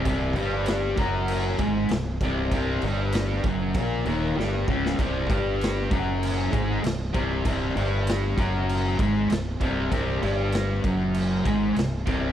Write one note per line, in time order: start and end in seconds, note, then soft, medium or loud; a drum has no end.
0.05 0.34 C1 loud
0.05 0.36 C2 medium
0.05 0.36 C3 loud
0.05 kick loud
0.05 crash medium
0.36 0.94 G1 loud
0.36 0.97 G2 loud
0.36 0.97 G3 loud
0.36 crash medium
0.66 snare loud
0.66 crash medium
0.97 1.55 F#1 medium
0.97 1.58 F#2 medium
0.97 1.59 F#3 loud
0.97 kick loud
0.97 crash medium
1.28 crash medium
1.59 1.88 G#1 medium
1.59 1.89 G#2 medium
1.59 1.89 G#3 medium
1.59 kick loud
1.59 crash medium
1.89 2.19 C1 medium
1.89 2.15 C2 medium
1.89 snare loud
1.89 crash medium
2.21 2.49 C1 medium
2.21 2.52 C2 medium
2.21 2.52 C3 loud
2.21 kick loud
2.21 crash medium
2.51 2.80 C1 medium
2.51 2.83 C2 loud
2.51 2.83 C3 loud
2.51 kick loud
2.51 crash medium
2.82 3.40 G1 loud
2.82 3.44 G2 medium
2.82 3.44 G3 loud
2.82 crash medium
3.12 snare loud
3.12 crash medium
3.44 3.73 F#1 loud
3.44 3.74 F#2 medium
3.44 3.75 F#3 loud
3.44 kick loud
3.44 crash medium
3.74 4.03 A#1 loud
3.74 4.06 A#2 loud
3.74 4.06 A#3 loud
3.74 kick loud
3.74 crash medium
4.05 4.34 D#1 medium
4.05 4.36 D#2 medium
4.05 4.36 D#3 loud
4.05 crash medium
4.36 4.65 G1 medium
4.36 4.66 G2 loud
4.36 4.67 G3 loud
4.36 snare medium
4.68 4.96 C#1 medium
4.68 4.98 C#2 medium
4.68 4.98 C#3 loud
4.68 kick medium
4.86 snare medium
4.98 5.27 C1 loud
4.98 5.28 C2 medium
4.98 5.29 C3 loud
4.98 kick loud
4.98 crash medium
5.30 5.87 G1 medium
5.30 5.91 G2 medium
5.30 5.91 G3 loud
5.30 kick loud
5.30 crash medium
5.61 snare loud
5.61 crash medium
5.91 6.49 F#1 medium
5.91 6.51 F#2 medium
5.91 6.51 F#3 loud
5.91 kick loud
5.91 crash medium
6.23 crash medium
6.52 6.81 G#1 loud
6.52 6.82 G#2 medium
6.52 6.82 G#3 medium
6.52 kick loud
6.52 crash medium
6.83 7.12 C1 medium
6.83 7.08 C2 medium
6.83 snare loud
6.83 crash medium
7.13 7.43 C1 medium
7.13 7.43 C2 loud
7.13 7.44 C3 loud
7.13 kick loud
7.13 crash medium
7.45 7.74 C1 medium
7.45 7.75 C2 loud
7.45 7.75 C3 loud
7.45 kick loud
7.45 crash medium
7.76 8.33 G1 loud
7.76 8.36 G2 medium
7.76 8.37 G3 loud
7.76 crash medium
8.07 snare loud
8.07 crash medium
8.37 8.95 F#1 loud
8.37 8.98 F#2 medium
8.37 8.98 F#3 loud
8.37 kick loud
8.37 crash medium
8.69 crash medium
8.99 9.28 G#1 medium
8.99 9.29 G#2 medium
8.99 9.29 G#3 loud
8.99 kick loud
8.99 crash medium
9.30 9.59 C1 medium
9.30 9.55 C2 medium
9.30 snare loud
9.30 crash medium
9.60 9.89 C1 loud
9.60 9.90 C2 medium
9.60 9.90 C3 loud
9.60 kick loud
9.60 crash medium
9.91 10.20 C1 medium
9.91 10.21 C2 loud
9.91 10.21 C3 loud
9.91 kick loud
9.91 crash medium
10.23 10.80 G1 medium
10.23 10.84 G2 loud
10.23 10.84 G3 loud
10.23 crash medium
10.52 snare loud
10.52 crash medium
10.84 11.42 F#1 loud
10.84 11.44 F#2 loud
10.84 11.45 F#3 loud
10.84 kick loud
10.84 crash medium
11.14 crash medium
11.45 11.74 G#1 medium
11.45 11.74 G#2 medium
11.45 11.75 G#3 loud
11.45 kick loud
11.45 crash medium
11.74 12.05 C1 medium
11.74 12.00 C2 medium
11.74 crash medium
11.79 snare loud
12.06 12.32 C1 loud
12.06 12.32 C2 medium
12.06 12.32 C3 loud
12.06 kick loud
12.06 crash medium